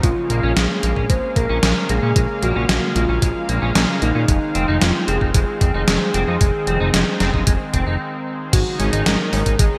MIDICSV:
0, 0, Header, 1, 6, 480
1, 0, Start_track
1, 0, Key_signature, -5, "minor"
1, 0, Tempo, 530973
1, 33, Time_signature, 4, 2, 24, 8
1, 8841, End_track
2, 0, Start_track
2, 0, Title_t, "Soft synth lead"
2, 0, Program_c, 0, 80
2, 30, Note_on_c, 0, 65, 102
2, 511, Note_on_c, 0, 68, 103
2, 525, Note_off_c, 0, 65, 0
2, 991, Note_on_c, 0, 72, 108
2, 1004, Note_off_c, 0, 68, 0
2, 1226, Note_off_c, 0, 72, 0
2, 1231, Note_on_c, 0, 70, 112
2, 1715, Note_on_c, 0, 68, 109
2, 1728, Note_off_c, 0, 70, 0
2, 2194, Note_on_c, 0, 66, 102
2, 2208, Note_off_c, 0, 68, 0
2, 2669, Note_off_c, 0, 66, 0
2, 2674, Note_on_c, 0, 65, 85
2, 3120, Note_off_c, 0, 65, 0
2, 3639, Note_on_c, 0, 63, 103
2, 4358, Note_on_c, 0, 65, 100
2, 4371, Note_off_c, 0, 63, 0
2, 4591, Note_off_c, 0, 65, 0
2, 4597, Note_on_c, 0, 68, 104
2, 4704, Note_off_c, 0, 68, 0
2, 4837, Note_on_c, 0, 68, 114
2, 7199, Note_off_c, 0, 68, 0
2, 7712, Note_on_c, 0, 66, 90
2, 7936, Note_off_c, 0, 66, 0
2, 7953, Note_on_c, 0, 68, 93
2, 8191, Note_on_c, 0, 70, 101
2, 8204, Note_off_c, 0, 68, 0
2, 8665, Note_off_c, 0, 70, 0
2, 8670, Note_on_c, 0, 68, 103
2, 8841, Note_off_c, 0, 68, 0
2, 8841, End_track
3, 0, Start_track
3, 0, Title_t, "Clean electric guitar"
3, 0, Program_c, 1, 27
3, 30, Note_on_c, 1, 56, 79
3, 72, Note_off_c, 1, 56, 0
3, 271, Note_on_c, 1, 58, 76
3, 374, Note_off_c, 1, 58, 0
3, 391, Note_on_c, 1, 61, 95
3, 460, Note_off_c, 1, 61, 0
3, 511, Note_on_c, 1, 56, 79
3, 553, Note_off_c, 1, 56, 0
3, 752, Note_on_c, 1, 58, 75
3, 821, Note_off_c, 1, 58, 0
3, 871, Note_on_c, 1, 61, 72
3, 940, Note_off_c, 1, 61, 0
3, 991, Note_on_c, 1, 56, 85
3, 1033, Note_off_c, 1, 56, 0
3, 1231, Note_on_c, 1, 58, 74
3, 1334, Note_off_c, 1, 58, 0
3, 1350, Note_on_c, 1, 61, 98
3, 1420, Note_off_c, 1, 61, 0
3, 1471, Note_on_c, 1, 56, 80
3, 1513, Note_off_c, 1, 56, 0
3, 1711, Note_on_c, 1, 58, 75
3, 1780, Note_off_c, 1, 58, 0
3, 1831, Note_on_c, 1, 61, 71
3, 1900, Note_off_c, 1, 61, 0
3, 1951, Note_on_c, 1, 56, 79
3, 1993, Note_off_c, 1, 56, 0
3, 2192, Note_on_c, 1, 58, 75
3, 2294, Note_off_c, 1, 58, 0
3, 2311, Note_on_c, 1, 61, 97
3, 2380, Note_off_c, 1, 61, 0
3, 2432, Note_on_c, 1, 56, 78
3, 2473, Note_off_c, 1, 56, 0
3, 2672, Note_on_c, 1, 58, 75
3, 2740, Note_off_c, 1, 58, 0
3, 2792, Note_on_c, 1, 61, 73
3, 2861, Note_off_c, 1, 61, 0
3, 2913, Note_on_c, 1, 56, 82
3, 2954, Note_off_c, 1, 56, 0
3, 3152, Note_on_c, 1, 58, 75
3, 3254, Note_off_c, 1, 58, 0
3, 3271, Note_on_c, 1, 61, 101
3, 3340, Note_off_c, 1, 61, 0
3, 3391, Note_on_c, 1, 56, 81
3, 3432, Note_off_c, 1, 56, 0
3, 3631, Note_on_c, 1, 58, 73
3, 3700, Note_off_c, 1, 58, 0
3, 3752, Note_on_c, 1, 61, 73
3, 3820, Note_off_c, 1, 61, 0
3, 3870, Note_on_c, 1, 56, 79
3, 3912, Note_off_c, 1, 56, 0
3, 4111, Note_on_c, 1, 60, 75
3, 4214, Note_off_c, 1, 60, 0
3, 4231, Note_on_c, 1, 63, 100
3, 4300, Note_off_c, 1, 63, 0
3, 4351, Note_on_c, 1, 56, 82
3, 4393, Note_off_c, 1, 56, 0
3, 4591, Note_on_c, 1, 60, 76
3, 4660, Note_off_c, 1, 60, 0
3, 4711, Note_on_c, 1, 63, 74
3, 4780, Note_off_c, 1, 63, 0
3, 4831, Note_on_c, 1, 56, 82
3, 4873, Note_off_c, 1, 56, 0
3, 5071, Note_on_c, 1, 60, 74
3, 5174, Note_off_c, 1, 60, 0
3, 5192, Note_on_c, 1, 63, 100
3, 5260, Note_off_c, 1, 63, 0
3, 5312, Note_on_c, 1, 56, 82
3, 5353, Note_off_c, 1, 56, 0
3, 5551, Note_on_c, 1, 60, 74
3, 5620, Note_off_c, 1, 60, 0
3, 5672, Note_on_c, 1, 63, 74
3, 5740, Note_off_c, 1, 63, 0
3, 5791, Note_on_c, 1, 56, 80
3, 5833, Note_off_c, 1, 56, 0
3, 6031, Note_on_c, 1, 60, 76
3, 6134, Note_off_c, 1, 60, 0
3, 6151, Note_on_c, 1, 63, 100
3, 6220, Note_off_c, 1, 63, 0
3, 6271, Note_on_c, 1, 56, 83
3, 6313, Note_off_c, 1, 56, 0
3, 6511, Note_on_c, 1, 60, 75
3, 6580, Note_off_c, 1, 60, 0
3, 6631, Note_on_c, 1, 63, 74
3, 6700, Note_off_c, 1, 63, 0
3, 6751, Note_on_c, 1, 56, 83
3, 6793, Note_off_c, 1, 56, 0
3, 6991, Note_on_c, 1, 60, 74
3, 7094, Note_off_c, 1, 60, 0
3, 7111, Note_on_c, 1, 63, 98
3, 7180, Note_off_c, 1, 63, 0
3, 7711, Note_on_c, 1, 56, 80
3, 7753, Note_off_c, 1, 56, 0
3, 7950, Note_on_c, 1, 61, 78
3, 8053, Note_off_c, 1, 61, 0
3, 8070, Note_on_c, 1, 63, 98
3, 8140, Note_off_c, 1, 63, 0
3, 8191, Note_on_c, 1, 56, 81
3, 8233, Note_off_c, 1, 56, 0
3, 8430, Note_on_c, 1, 61, 75
3, 8500, Note_off_c, 1, 61, 0
3, 8550, Note_on_c, 1, 63, 75
3, 8620, Note_off_c, 1, 63, 0
3, 8671, Note_on_c, 1, 56, 85
3, 8713, Note_off_c, 1, 56, 0
3, 8841, End_track
4, 0, Start_track
4, 0, Title_t, "Analog synth pad"
4, 0, Program_c, 2, 89
4, 0, Note_on_c, 2, 49, 83
4, 31, Note_on_c, 2, 56, 78
4, 31, Note_on_c, 2, 77, 93
4, 32, Note_on_c, 2, 58, 77
4, 3836, Note_off_c, 2, 49, 0
4, 3836, Note_off_c, 2, 58, 0
4, 3871, Note_on_c, 2, 60, 76
4, 3873, Note_on_c, 2, 51, 82
4, 7676, Note_off_c, 2, 56, 0
4, 7676, Note_off_c, 2, 60, 0
4, 7676, Note_off_c, 2, 77, 0
4, 7677, Note_off_c, 2, 51, 0
4, 7713, Note_on_c, 2, 49, 82
4, 7713, Note_on_c, 2, 51, 78
4, 7713, Note_on_c, 2, 63, 91
4, 7714, Note_on_c, 2, 56, 77
4, 8841, Note_off_c, 2, 49, 0
4, 8841, Note_off_c, 2, 51, 0
4, 8841, Note_off_c, 2, 56, 0
4, 8841, Note_off_c, 2, 63, 0
4, 8841, End_track
5, 0, Start_track
5, 0, Title_t, "Analog synth bass"
5, 0, Program_c, 3, 38
5, 32, Note_on_c, 3, 34, 97
5, 128, Note_off_c, 3, 34, 0
5, 271, Note_on_c, 3, 34, 94
5, 367, Note_off_c, 3, 34, 0
5, 393, Note_on_c, 3, 34, 80
5, 488, Note_off_c, 3, 34, 0
5, 513, Note_on_c, 3, 34, 100
5, 608, Note_off_c, 3, 34, 0
5, 753, Note_on_c, 3, 34, 98
5, 848, Note_off_c, 3, 34, 0
5, 871, Note_on_c, 3, 34, 82
5, 967, Note_off_c, 3, 34, 0
5, 992, Note_on_c, 3, 34, 100
5, 1088, Note_off_c, 3, 34, 0
5, 1231, Note_on_c, 3, 34, 96
5, 1327, Note_off_c, 3, 34, 0
5, 1353, Note_on_c, 3, 34, 84
5, 1448, Note_off_c, 3, 34, 0
5, 1472, Note_on_c, 3, 34, 103
5, 1568, Note_off_c, 3, 34, 0
5, 1714, Note_on_c, 3, 34, 95
5, 1808, Note_off_c, 3, 34, 0
5, 1833, Note_on_c, 3, 46, 80
5, 1928, Note_off_c, 3, 46, 0
5, 1952, Note_on_c, 3, 34, 102
5, 2048, Note_off_c, 3, 34, 0
5, 2193, Note_on_c, 3, 34, 92
5, 2288, Note_off_c, 3, 34, 0
5, 2313, Note_on_c, 3, 34, 78
5, 2408, Note_off_c, 3, 34, 0
5, 2431, Note_on_c, 3, 34, 100
5, 2527, Note_off_c, 3, 34, 0
5, 2672, Note_on_c, 3, 34, 96
5, 2768, Note_off_c, 3, 34, 0
5, 2793, Note_on_c, 3, 34, 81
5, 2888, Note_off_c, 3, 34, 0
5, 2912, Note_on_c, 3, 34, 100
5, 3008, Note_off_c, 3, 34, 0
5, 3154, Note_on_c, 3, 34, 94
5, 3249, Note_off_c, 3, 34, 0
5, 3273, Note_on_c, 3, 34, 83
5, 3368, Note_off_c, 3, 34, 0
5, 3394, Note_on_c, 3, 34, 102
5, 3488, Note_off_c, 3, 34, 0
5, 3635, Note_on_c, 3, 34, 93
5, 3729, Note_off_c, 3, 34, 0
5, 3754, Note_on_c, 3, 46, 81
5, 3849, Note_off_c, 3, 46, 0
5, 3873, Note_on_c, 3, 29, 100
5, 3968, Note_off_c, 3, 29, 0
5, 4114, Note_on_c, 3, 29, 95
5, 4209, Note_off_c, 3, 29, 0
5, 4236, Note_on_c, 3, 29, 82
5, 4330, Note_off_c, 3, 29, 0
5, 4354, Note_on_c, 3, 29, 100
5, 4449, Note_off_c, 3, 29, 0
5, 4592, Note_on_c, 3, 29, 95
5, 4688, Note_off_c, 3, 29, 0
5, 4711, Note_on_c, 3, 29, 79
5, 4807, Note_off_c, 3, 29, 0
5, 4832, Note_on_c, 3, 29, 100
5, 4928, Note_off_c, 3, 29, 0
5, 5072, Note_on_c, 3, 29, 97
5, 5168, Note_off_c, 3, 29, 0
5, 5194, Note_on_c, 3, 29, 84
5, 5289, Note_off_c, 3, 29, 0
5, 5314, Note_on_c, 3, 29, 101
5, 5409, Note_off_c, 3, 29, 0
5, 5553, Note_on_c, 3, 29, 96
5, 5648, Note_off_c, 3, 29, 0
5, 5674, Note_on_c, 3, 41, 81
5, 5769, Note_off_c, 3, 41, 0
5, 5792, Note_on_c, 3, 29, 98
5, 5888, Note_off_c, 3, 29, 0
5, 6032, Note_on_c, 3, 29, 94
5, 6128, Note_off_c, 3, 29, 0
5, 6153, Note_on_c, 3, 29, 81
5, 6248, Note_off_c, 3, 29, 0
5, 6270, Note_on_c, 3, 29, 98
5, 6367, Note_off_c, 3, 29, 0
5, 6512, Note_on_c, 3, 29, 95
5, 6608, Note_off_c, 3, 29, 0
5, 6632, Note_on_c, 3, 29, 82
5, 6728, Note_off_c, 3, 29, 0
5, 6752, Note_on_c, 3, 29, 102
5, 6848, Note_off_c, 3, 29, 0
5, 6992, Note_on_c, 3, 29, 99
5, 7088, Note_off_c, 3, 29, 0
5, 7112, Note_on_c, 3, 29, 83
5, 7208, Note_off_c, 3, 29, 0
5, 7712, Note_on_c, 3, 32, 104
5, 7808, Note_off_c, 3, 32, 0
5, 7951, Note_on_c, 3, 32, 96
5, 8047, Note_off_c, 3, 32, 0
5, 8072, Note_on_c, 3, 32, 81
5, 8168, Note_off_c, 3, 32, 0
5, 8192, Note_on_c, 3, 32, 101
5, 8288, Note_off_c, 3, 32, 0
5, 8434, Note_on_c, 3, 32, 98
5, 8529, Note_off_c, 3, 32, 0
5, 8551, Note_on_c, 3, 32, 85
5, 8647, Note_off_c, 3, 32, 0
5, 8671, Note_on_c, 3, 32, 103
5, 8767, Note_off_c, 3, 32, 0
5, 8841, End_track
6, 0, Start_track
6, 0, Title_t, "Drums"
6, 31, Note_on_c, 9, 42, 83
6, 32, Note_on_c, 9, 36, 116
6, 121, Note_off_c, 9, 42, 0
6, 122, Note_off_c, 9, 36, 0
6, 271, Note_on_c, 9, 42, 61
6, 361, Note_off_c, 9, 42, 0
6, 512, Note_on_c, 9, 38, 115
6, 512, Note_on_c, 9, 42, 86
6, 602, Note_off_c, 9, 38, 0
6, 602, Note_off_c, 9, 42, 0
6, 751, Note_on_c, 9, 42, 62
6, 842, Note_off_c, 9, 42, 0
6, 872, Note_on_c, 9, 36, 60
6, 962, Note_off_c, 9, 36, 0
6, 992, Note_on_c, 9, 36, 117
6, 992, Note_on_c, 9, 42, 82
6, 1082, Note_off_c, 9, 36, 0
6, 1082, Note_off_c, 9, 42, 0
6, 1232, Note_on_c, 9, 36, 103
6, 1232, Note_on_c, 9, 42, 65
6, 1322, Note_off_c, 9, 36, 0
6, 1322, Note_off_c, 9, 42, 0
6, 1472, Note_on_c, 9, 38, 113
6, 1472, Note_on_c, 9, 42, 85
6, 1562, Note_off_c, 9, 38, 0
6, 1562, Note_off_c, 9, 42, 0
6, 1712, Note_on_c, 9, 42, 63
6, 1802, Note_off_c, 9, 42, 0
6, 1952, Note_on_c, 9, 36, 107
6, 1952, Note_on_c, 9, 42, 85
6, 2042, Note_off_c, 9, 36, 0
6, 2042, Note_off_c, 9, 42, 0
6, 2193, Note_on_c, 9, 42, 59
6, 2283, Note_off_c, 9, 42, 0
6, 2433, Note_on_c, 9, 38, 114
6, 2433, Note_on_c, 9, 42, 87
6, 2523, Note_off_c, 9, 38, 0
6, 2523, Note_off_c, 9, 42, 0
6, 2674, Note_on_c, 9, 42, 63
6, 2764, Note_off_c, 9, 42, 0
6, 2913, Note_on_c, 9, 36, 113
6, 2913, Note_on_c, 9, 42, 84
6, 3003, Note_off_c, 9, 36, 0
6, 3003, Note_off_c, 9, 42, 0
6, 3154, Note_on_c, 9, 42, 65
6, 3245, Note_off_c, 9, 42, 0
6, 3394, Note_on_c, 9, 38, 114
6, 3394, Note_on_c, 9, 42, 86
6, 3484, Note_off_c, 9, 38, 0
6, 3484, Note_off_c, 9, 42, 0
6, 3634, Note_on_c, 9, 42, 62
6, 3725, Note_off_c, 9, 42, 0
6, 3873, Note_on_c, 9, 36, 110
6, 3873, Note_on_c, 9, 42, 88
6, 3963, Note_off_c, 9, 36, 0
6, 3964, Note_off_c, 9, 42, 0
6, 4114, Note_on_c, 9, 42, 64
6, 4204, Note_off_c, 9, 42, 0
6, 4353, Note_on_c, 9, 38, 113
6, 4353, Note_on_c, 9, 42, 92
6, 4443, Note_off_c, 9, 38, 0
6, 4443, Note_off_c, 9, 42, 0
6, 4592, Note_on_c, 9, 42, 65
6, 4683, Note_off_c, 9, 42, 0
6, 4712, Note_on_c, 9, 36, 57
6, 4803, Note_off_c, 9, 36, 0
6, 4832, Note_on_c, 9, 36, 113
6, 4832, Note_on_c, 9, 42, 86
6, 4922, Note_off_c, 9, 42, 0
6, 4923, Note_off_c, 9, 36, 0
6, 5072, Note_on_c, 9, 36, 97
6, 5073, Note_on_c, 9, 42, 67
6, 5163, Note_off_c, 9, 36, 0
6, 5163, Note_off_c, 9, 42, 0
6, 5312, Note_on_c, 9, 38, 107
6, 5312, Note_on_c, 9, 42, 90
6, 5403, Note_off_c, 9, 38, 0
6, 5403, Note_off_c, 9, 42, 0
6, 5553, Note_on_c, 9, 42, 63
6, 5643, Note_off_c, 9, 42, 0
6, 5792, Note_on_c, 9, 36, 112
6, 5793, Note_on_c, 9, 42, 88
6, 5883, Note_off_c, 9, 36, 0
6, 5883, Note_off_c, 9, 42, 0
6, 6032, Note_on_c, 9, 42, 65
6, 6122, Note_off_c, 9, 42, 0
6, 6272, Note_on_c, 9, 38, 113
6, 6272, Note_on_c, 9, 42, 93
6, 6363, Note_off_c, 9, 38, 0
6, 6363, Note_off_c, 9, 42, 0
6, 6512, Note_on_c, 9, 38, 60
6, 6512, Note_on_c, 9, 42, 66
6, 6602, Note_off_c, 9, 38, 0
6, 6602, Note_off_c, 9, 42, 0
6, 6632, Note_on_c, 9, 36, 59
6, 6723, Note_off_c, 9, 36, 0
6, 6752, Note_on_c, 9, 36, 113
6, 6752, Note_on_c, 9, 42, 91
6, 6842, Note_off_c, 9, 42, 0
6, 6843, Note_off_c, 9, 36, 0
6, 6992, Note_on_c, 9, 36, 57
6, 6994, Note_on_c, 9, 42, 68
6, 7082, Note_off_c, 9, 36, 0
6, 7084, Note_off_c, 9, 42, 0
6, 7712, Note_on_c, 9, 36, 118
6, 7713, Note_on_c, 9, 42, 95
6, 7713, Note_on_c, 9, 49, 101
6, 7802, Note_off_c, 9, 36, 0
6, 7803, Note_off_c, 9, 42, 0
6, 7803, Note_off_c, 9, 49, 0
6, 7952, Note_on_c, 9, 42, 68
6, 8042, Note_off_c, 9, 42, 0
6, 8073, Note_on_c, 9, 42, 70
6, 8163, Note_off_c, 9, 42, 0
6, 8192, Note_on_c, 9, 38, 125
6, 8192, Note_on_c, 9, 42, 99
6, 8283, Note_off_c, 9, 38, 0
6, 8283, Note_off_c, 9, 42, 0
6, 8433, Note_on_c, 9, 46, 81
6, 8523, Note_off_c, 9, 46, 0
6, 8552, Note_on_c, 9, 36, 60
6, 8553, Note_on_c, 9, 42, 68
6, 8642, Note_off_c, 9, 36, 0
6, 8643, Note_off_c, 9, 42, 0
6, 8672, Note_on_c, 9, 36, 121
6, 8672, Note_on_c, 9, 42, 93
6, 8762, Note_off_c, 9, 36, 0
6, 8763, Note_off_c, 9, 42, 0
6, 8841, End_track
0, 0, End_of_file